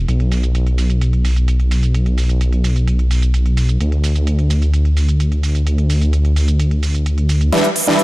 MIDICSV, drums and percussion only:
0, 0, Header, 1, 2, 480
1, 0, Start_track
1, 0, Tempo, 465116
1, 87, Time_signature, 4, 2, 24, 8
1, 8293, End_track
2, 0, Start_track
2, 0, Title_t, "Drums"
2, 88, Note_on_c, 9, 42, 84
2, 88, Note_on_c, 9, 82, 32
2, 191, Note_off_c, 9, 42, 0
2, 191, Note_off_c, 9, 82, 0
2, 207, Note_on_c, 9, 42, 35
2, 310, Note_off_c, 9, 42, 0
2, 327, Note_on_c, 9, 46, 103
2, 327, Note_on_c, 9, 82, 76
2, 430, Note_off_c, 9, 46, 0
2, 431, Note_off_c, 9, 82, 0
2, 447, Note_on_c, 9, 42, 38
2, 448, Note_on_c, 9, 82, 44
2, 551, Note_off_c, 9, 42, 0
2, 551, Note_off_c, 9, 82, 0
2, 567, Note_on_c, 9, 42, 86
2, 567, Note_on_c, 9, 82, 31
2, 670, Note_off_c, 9, 42, 0
2, 670, Note_off_c, 9, 82, 0
2, 687, Note_on_c, 9, 42, 38
2, 790, Note_off_c, 9, 42, 0
2, 807, Note_on_c, 9, 46, 97
2, 808, Note_on_c, 9, 82, 72
2, 910, Note_off_c, 9, 46, 0
2, 911, Note_off_c, 9, 82, 0
2, 927, Note_on_c, 9, 42, 36
2, 927, Note_on_c, 9, 82, 42
2, 1030, Note_off_c, 9, 42, 0
2, 1030, Note_off_c, 9, 82, 0
2, 1047, Note_on_c, 9, 42, 82
2, 1048, Note_on_c, 9, 82, 32
2, 1150, Note_off_c, 9, 42, 0
2, 1151, Note_off_c, 9, 82, 0
2, 1168, Note_on_c, 9, 42, 35
2, 1271, Note_off_c, 9, 42, 0
2, 1287, Note_on_c, 9, 46, 102
2, 1288, Note_on_c, 9, 82, 73
2, 1390, Note_off_c, 9, 46, 0
2, 1391, Note_off_c, 9, 82, 0
2, 1408, Note_on_c, 9, 42, 38
2, 1408, Note_on_c, 9, 82, 44
2, 1511, Note_off_c, 9, 42, 0
2, 1512, Note_off_c, 9, 82, 0
2, 1528, Note_on_c, 9, 42, 85
2, 1529, Note_on_c, 9, 82, 33
2, 1631, Note_off_c, 9, 42, 0
2, 1632, Note_off_c, 9, 82, 0
2, 1647, Note_on_c, 9, 42, 37
2, 1750, Note_off_c, 9, 42, 0
2, 1767, Note_on_c, 9, 46, 100
2, 1768, Note_on_c, 9, 82, 73
2, 1870, Note_off_c, 9, 46, 0
2, 1871, Note_off_c, 9, 82, 0
2, 1887, Note_on_c, 9, 42, 38
2, 1888, Note_on_c, 9, 82, 44
2, 1991, Note_off_c, 9, 42, 0
2, 1991, Note_off_c, 9, 82, 0
2, 2008, Note_on_c, 9, 42, 88
2, 2008, Note_on_c, 9, 82, 33
2, 2111, Note_off_c, 9, 42, 0
2, 2112, Note_off_c, 9, 82, 0
2, 2127, Note_on_c, 9, 42, 38
2, 2230, Note_off_c, 9, 42, 0
2, 2247, Note_on_c, 9, 46, 96
2, 2248, Note_on_c, 9, 82, 76
2, 2350, Note_off_c, 9, 46, 0
2, 2351, Note_off_c, 9, 82, 0
2, 2367, Note_on_c, 9, 42, 38
2, 2367, Note_on_c, 9, 82, 46
2, 2470, Note_off_c, 9, 42, 0
2, 2471, Note_off_c, 9, 82, 0
2, 2487, Note_on_c, 9, 42, 87
2, 2487, Note_on_c, 9, 82, 34
2, 2590, Note_off_c, 9, 42, 0
2, 2590, Note_off_c, 9, 82, 0
2, 2606, Note_on_c, 9, 42, 38
2, 2710, Note_off_c, 9, 42, 0
2, 2727, Note_on_c, 9, 46, 91
2, 2728, Note_on_c, 9, 82, 75
2, 2831, Note_off_c, 9, 46, 0
2, 2831, Note_off_c, 9, 82, 0
2, 2848, Note_on_c, 9, 42, 37
2, 2849, Note_on_c, 9, 82, 44
2, 2951, Note_off_c, 9, 42, 0
2, 2952, Note_off_c, 9, 82, 0
2, 2968, Note_on_c, 9, 42, 86
2, 2968, Note_on_c, 9, 82, 33
2, 3071, Note_off_c, 9, 42, 0
2, 3071, Note_off_c, 9, 82, 0
2, 3087, Note_on_c, 9, 42, 38
2, 3191, Note_off_c, 9, 42, 0
2, 3207, Note_on_c, 9, 46, 100
2, 3208, Note_on_c, 9, 82, 80
2, 3311, Note_off_c, 9, 46, 0
2, 3311, Note_off_c, 9, 82, 0
2, 3327, Note_on_c, 9, 42, 40
2, 3328, Note_on_c, 9, 82, 46
2, 3430, Note_off_c, 9, 42, 0
2, 3431, Note_off_c, 9, 82, 0
2, 3447, Note_on_c, 9, 42, 88
2, 3448, Note_on_c, 9, 82, 35
2, 3550, Note_off_c, 9, 42, 0
2, 3551, Note_off_c, 9, 82, 0
2, 3567, Note_on_c, 9, 42, 38
2, 3670, Note_off_c, 9, 42, 0
2, 3687, Note_on_c, 9, 46, 98
2, 3687, Note_on_c, 9, 82, 78
2, 3790, Note_off_c, 9, 46, 0
2, 3790, Note_off_c, 9, 82, 0
2, 3807, Note_on_c, 9, 42, 37
2, 3808, Note_on_c, 9, 82, 44
2, 3910, Note_off_c, 9, 42, 0
2, 3911, Note_off_c, 9, 82, 0
2, 3927, Note_on_c, 9, 42, 89
2, 3928, Note_on_c, 9, 82, 35
2, 4030, Note_off_c, 9, 42, 0
2, 4031, Note_off_c, 9, 82, 0
2, 4047, Note_on_c, 9, 42, 41
2, 4150, Note_off_c, 9, 42, 0
2, 4167, Note_on_c, 9, 46, 95
2, 4168, Note_on_c, 9, 82, 79
2, 4270, Note_off_c, 9, 46, 0
2, 4271, Note_off_c, 9, 82, 0
2, 4287, Note_on_c, 9, 42, 41
2, 4288, Note_on_c, 9, 82, 47
2, 4390, Note_off_c, 9, 42, 0
2, 4391, Note_off_c, 9, 82, 0
2, 4407, Note_on_c, 9, 42, 93
2, 4408, Note_on_c, 9, 82, 34
2, 4511, Note_off_c, 9, 42, 0
2, 4511, Note_off_c, 9, 82, 0
2, 4527, Note_on_c, 9, 42, 39
2, 4630, Note_off_c, 9, 42, 0
2, 4647, Note_on_c, 9, 46, 93
2, 4647, Note_on_c, 9, 82, 75
2, 4750, Note_off_c, 9, 46, 0
2, 4751, Note_off_c, 9, 82, 0
2, 4767, Note_on_c, 9, 42, 39
2, 4768, Note_on_c, 9, 82, 44
2, 4870, Note_off_c, 9, 42, 0
2, 4871, Note_off_c, 9, 82, 0
2, 4887, Note_on_c, 9, 42, 91
2, 4888, Note_on_c, 9, 82, 32
2, 4991, Note_off_c, 9, 42, 0
2, 4991, Note_off_c, 9, 82, 0
2, 5007, Note_on_c, 9, 42, 38
2, 5110, Note_off_c, 9, 42, 0
2, 5127, Note_on_c, 9, 46, 94
2, 5128, Note_on_c, 9, 82, 79
2, 5230, Note_off_c, 9, 46, 0
2, 5231, Note_off_c, 9, 82, 0
2, 5248, Note_on_c, 9, 42, 40
2, 5249, Note_on_c, 9, 82, 47
2, 5352, Note_off_c, 9, 42, 0
2, 5352, Note_off_c, 9, 82, 0
2, 5367, Note_on_c, 9, 42, 91
2, 5368, Note_on_c, 9, 82, 35
2, 5471, Note_off_c, 9, 42, 0
2, 5471, Note_off_c, 9, 82, 0
2, 5488, Note_on_c, 9, 42, 40
2, 5591, Note_off_c, 9, 42, 0
2, 5608, Note_on_c, 9, 46, 97
2, 5609, Note_on_c, 9, 82, 76
2, 5711, Note_off_c, 9, 46, 0
2, 5712, Note_off_c, 9, 82, 0
2, 5727, Note_on_c, 9, 42, 39
2, 5728, Note_on_c, 9, 82, 45
2, 5830, Note_off_c, 9, 42, 0
2, 5831, Note_off_c, 9, 82, 0
2, 5848, Note_on_c, 9, 42, 92
2, 5849, Note_on_c, 9, 82, 34
2, 5951, Note_off_c, 9, 42, 0
2, 5952, Note_off_c, 9, 82, 0
2, 5968, Note_on_c, 9, 42, 41
2, 6071, Note_off_c, 9, 42, 0
2, 6087, Note_on_c, 9, 46, 96
2, 6088, Note_on_c, 9, 82, 77
2, 6191, Note_off_c, 9, 46, 0
2, 6191, Note_off_c, 9, 82, 0
2, 6207, Note_on_c, 9, 42, 41
2, 6208, Note_on_c, 9, 82, 46
2, 6310, Note_off_c, 9, 42, 0
2, 6311, Note_off_c, 9, 82, 0
2, 6327, Note_on_c, 9, 42, 93
2, 6328, Note_on_c, 9, 82, 33
2, 6430, Note_off_c, 9, 42, 0
2, 6431, Note_off_c, 9, 82, 0
2, 6447, Note_on_c, 9, 42, 40
2, 6551, Note_off_c, 9, 42, 0
2, 6567, Note_on_c, 9, 46, 97
2, 6568, Note_on_c, 9, 82, 74
2, 6671, Note_off_c, 9, 46, 0
2, 6671, Note_off_c, 9, 82, 0
2, 6687, Note_on_c, 9, 42, 40
2, 6688, Note_on_c, 9, 82, 44
2, 6790, Note_off_c, 9, 42, 0
2, 6791, Note_off_c, 9, 82, 0
2, 6807, Note_on_c, 9, 42, 94
2, 6807, Note_on_c, 9, 82, 33
2, 6910, Note_off_c, 9, 42, 0
2, 6911, Note_off_c, 9, 82, 0
2, 6927, Note_on_c, 9, 42, 40
2, 7031, Note_off_c, 9, 42, 0
2, 7047, Note_on_c, 9, 46, 97
2, 7048, Note_on_c, 9, 82, 78
2, 7150, Note_off_c, 9, 46, 0
2, 7151, Note_off_c, 9, 82, 0
2, 7167, Note_on_c, 9, 42, 41
2, 7168, Note_on_c, 9, 82, 46
2, 7271, Note_off_c, 9, 42, 0
2, 7271, Note_off_c, 9, 82, 0
2, 7287, Note_on_c, 9, 42, 92
2, 7288, Note_on_c, 9, 82, 33
2, 7390, Note_off_c, 9, 42, 0
2, 7391, Note_off_c, 9, 82, 0
2, 7407, Note_on_c, 9, 42, 39
2, 7510, Note_off_c, 9, 42, 0
2, 7526, Note_on_c, 9, 46, 99
2, 7527, Note_on_c, 9, 82, 77
2, 7629, Note_off_c, 9, 46, 0
2, 7630, Note_off_c, 9, 82, 0
2, 7647, Note_on_c, 9, 42, 41
2, 7647, Note_on_c, 9, 82, 45
2, 7750, Note_off_c, 9, 42, 0
2, 7751, Note_off_c, 9, 82, 0
2, 7766, Note_on_c, 9, 38, 48
2, 7766, Note_on_c, 9, 42, 92
2, 7869, Note_off_c, 9, 38, 0
2, 7869, Note_off_c, 9, 42, 0
2, 7887, Note_on_c, 9, 42, 40
2, 7990, Note_off_c, 9, 42, 0
2, 8006, Note_on_c, 9, 46, 103
2, 8109, Note_off_c, 9, 46, 0
2, 8127, Note_on_c, 9, 38, 44
2, 8230, Note_off_c, 9, 38, 0
2, 8246, Note_on_c, 9, 42, 92
2, 8293, Note_off_c, 9, 42, 0
2, 8293, End_track
0, 0, End_of_file